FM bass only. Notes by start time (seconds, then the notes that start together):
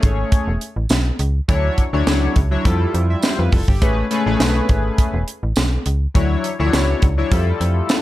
0.03 G#1
0.48 E1
0.77 A1
0.90 B1
1.20 C#2
1.49 D2
1.93 D2
2.07 C#2
2.36 C#2
2.65 F2
2.94 F2
3.39 F2
3.52 F1
3.68 G1
3.82 A1
4.26 A1
4.40 B1
4.69 G#1
5.14 E1
5.43 A1
5.57 B1
5.86 C#2
6.15 D2
6.60 D2
6.73 C#2
7.03 C#2
7.32 F2
7.61 F2